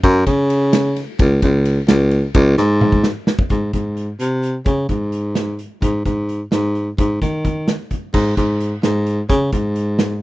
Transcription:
0.03 baritone saxophone F#2, kick, ride
0.27 baritone saxophone C#3, kick, ride
0.50 ride
0.73 snare, ride
0.96 snare, ride
1.19 baritone saxophone C#2, kick, ride
1.42 baritone saxophone C#2, kick, ride
1.65 ride
1.88 baritone saxophone C#2, snare, ride
2.11 ride
2.34 baritone saxophone C#2, kick, ride
2.58 baritone saxophone G#2, snare
2.81 mid tom
2.92 kick
3.03 snare
3.27 snare
3.39 kick
3.50 baritone saxophone G#2, kick, closed hi-hat
3.73 baritone saxophone G#2, kick, closed hi-hat
3.97 closed hi-hat
4.20 baritone saxophone C3, closed hi-hat
4.43 closed hi-hat
4.66 baritone saxophone C#3, kick, closed hi-hat
4.89 baritone saxophone G#2, kick, closed hi-hat
5.12 closed hi-hat
5.35 snare, closed hi-hat
5.59 closed hi-hat
5.82 baritone saxophone G#2, kick, closed hi-hat
6.05 baritone saxophone G#2, kick, closed hi-hat
6.29 closed hi-hat
6.52 baritone saxophone G#2, snare, closed hi-hat
6.75 closed hi-hat
6.98 baritone saxophone G#2, kick, closed hi-hat
7.21 baritone saxophone D#3, kick, snare, closed hi-hat
7.45 kick, closed hi-hat
7.68 snare, closed hi-hat
7.91 kick, closed hi-hat
8.14 baritone saxophone G#2, kick, crash
8.37 baritone saxophone G#2, kick, closed hi-hat
8.60 closed hi-hat
8.83 baritone saxophone G#2, snare, closed hi-hat
9.06 closed hi-hat
9.29 baritone saxophone C#3, kick, closed hi-hat
9.52 baritone saxophone G#2, kick, closed hi-hat
9.76 closed hi-hat
9.99 snare, closed hi-hat

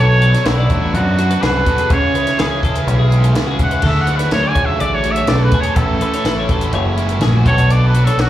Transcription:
Already playing: picked electric bass B1, overdriven electric guitar B2, clean electric guitar B2 D4 A4
0.00 overdriven electric guitar F#3 B3 D4 F#4, trumpet C#5
0.21 clean electric guitar F#3 B4, overdriven electric guitar B3 D4 F#4, closed hi-hat
0.34 clean electric guitar C#5, snare, closed hi-hat
0.45 picked electric bass B1, overdriven electric guitar F#3 B3 D4 F#4, clean electric guitar D4, trumpet E4, snare, closed hi-hat
0.58 clean electric guitar D5
0.70 picked electric bass A1, clean electric guitar D4 C#5, kick, closed hi-hat
0.83 clean electric guitar E5
0.94 clean electric guitar F#2 D5, picked electric bass F#2, trumpet F#4, closed hi-hat
1.17 overdriven electric guitar B3 D4 F#4, clean electric guitar F#4, closed hi-hat
1.30 clean electric guitar B4, closed hi-hat
1.42 picked electric bass C2, overdriven electric guitar B2 F#3 B3 D4 F#4, clean electric guitar D4 G#4, trumpet B4, snare, closed hi-hat
1.65 clean electric guitar B2 F#4 A4, overdriven electric guitar B3 D4 F#4, kick, closed hi-hat
1.78 clean electric guitar G#4, closed hi-hat
1.90 picked electric bass C#2, overdriven electric guitar C#3 E3 G#3 C#4 G#4, clean electric guitar C#3 G#4, trumpet C#5, kick, closed hi-hat
2.14 overdriven electric guitar G#3 C#4 G#4, clean electric guitar E4 B4, closed hi-hat
2.27 clean electric guitar C#5, snare, closed hi-hat
2.38 picked electric bass C#2, overdriven electric guitar E3 G#3 C#4 G#4, clean electric guitar E3 B4, trumpet G#4, snare, closed hi-hat
2.51 clean electric guitar C#5
2.63 clean electric guitar E4 A4, kick, closed hi-hat
2.75 clean electric guitar B4, closed hi-hat
2.87 picked electric bass B1, clean electric guitar E4 C#5, closed hi-hat
2.99 clean electric guitar G#4
3.10 clean electric guitar G#2, overdriven electric guitar G#3 C#4 G#4, closed hi-hat
3.23 clean electric guitar A4, closed hi-hat
3.34 picked electric bass C#2, overdriven electric guitar C#3 E3 G#3 C#4 G#4, clean electric guitar B3 G#4, snare, closed hi-hat
3.47 clean electric guitar F#4
3.58 overdriven electric guitar G#3 C#4 G#4, clean electric guitar E4 G#4, kick, closed hi-hat
3.63 trumpet F#5
3.71 clean electric guitar B4, closed hi-hat
3.82 picked electric bass D2, clean electric guitar D3 F#3 E4 G#4 A4, overdriven electric guitar D3 A3 D4, kick, crash
3.86 overdriven electric guitar F#4, trumpet E5
4.01 trumpet F#5
4.07 overdriven electric guitar D4 F#4, clean electric guitar E4 B4, closed hi-hat
4.11 overdriven electric guitar A3
4.17 trumpet B4, clean electric guitar C#5, snare, closed hi-hat
4.31 picked electric bass D2, overdriven electric guitar D3 A3 D4, clean electric guitar F#3, trumpet C#5, snare, closed hi-hat
4.35 overdriven electric guitar F#4
4.43 clean electric guitar D5
4.49 trumpet G#5
4.55 picked electric bass C#2, clean electric guitar G#4 C#5, kick, closed hi-hat
4.65 trumpet E5, clean electric guitar E5
4.80 picked electric bass A1, clean electric guitar E4 D5, trumpet D5, closed hi-hat
4.95 trumpet C#5
5.03 clean electric guitar A2 F#4, overdriven electric guitar A3 D4 F#4, closed hi-hat
5.11 trumpet E5
5.16 clean electric guitar C#5, closed hi-hat
5.27 picked electric bass B1, clean electric guitar C#3 A4, overdriven electric guitar D3 A3 D4, trumpet D5, snare, closed hi-hat
5.32 overdriven electric guitar F#4
5.43 trumpet B4
5.51 clean electric guitar B2 G#4, overdriven electric guitar D4 F#4, kick, closed hi-hat
5.57 overdriven electric guitar A3, trumpet C#5
5.63 clean electric guitar A4, closed hi-hat
5.76 picked electric bass A1, clean electric guitar A2 E3 C#4 E4, overdriven electric guitar A2 E3 A3 C#4, trumpet A4, kick, closed hi-hat
5.80 overdriven electric guitar E4, clean electric guitar F#4
6.01 overdriven electric guitar A3 C#4 E4, clean electric guitar C#4 B4, closed hi-hat
6.13 clean electric guitar E4 C#5, snare, closed hi-hat
6.25 picked electric bass A1, overdriven electric guitar E3 A3 C#4 E4, clean electric guitar E3 B4, snare, closed hi-hat
6.39 clean electric guitar C#5
6.49 clean electric guitar F#4 A4, kick, closed hi-hat
6.61 clean electric guitar B4, closed hi-hat
6.73 picked electric bass F#1, clean electric guitar E4 C#5, closed hi-hat
6.87 clean electric guitar G#4
6.97 clean electric guitar G#2, overdriven electric guitar A3 C#4 E4, closed hi-hat
7.09 clean electric guitar A4, closed hi-hat
7.20 picked electric bass A#1, clean electric guitar A2 G#4, overdriven electric guitar A2 E3 A3 C#4, snare, closed hi-hat
7.24 overdriven electric guitar E4
7.35 clean electric guitar F#4
7.45 picked electric bass B1, clean electric guitar B2 F#4 A4, overdriven electric guitar F#3 B3 D4 F#4, trumpet C#5, kick, closed hi-hat
7.49 overdriven electric guitar B2
7.58 clean electric guitar A4 C#5, closed hi-hat
7.70 overdriven electric guitar B2 F#3 B3 D4 F#4, clean electric guitar D4 A4, trumpet D5, closed hi-hat
7.88 trumpet B4
7.94 clean electric guitar F#3 B4, overdriven electric guitar D4 F#4, closed hi-hat
7.98 overdriven electric guitar B3
8.05 trumpet A4, clean electric guitar C#5, snare, closed hi-hat
8.18 picked electric bass B1, overdriven electric guitar F#3 B3 D4, clean electric guitar D4, trumpet F#4, snare, closed hi-hat
8.22 overdriven electric guitar F#4

